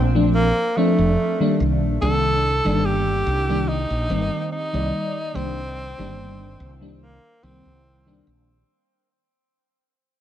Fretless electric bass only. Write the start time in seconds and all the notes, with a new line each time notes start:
Already playing: A#1
0.98 F1
1.60 C2
1.82 A#1
2.02 C2
2.65 G1
3.26 C2
3.90 A#1
4.10 G1
4.74 C2
5.36 C2
5.99 G1
6.60 C2
7.43 C2
7.65 C2
8.27 A#1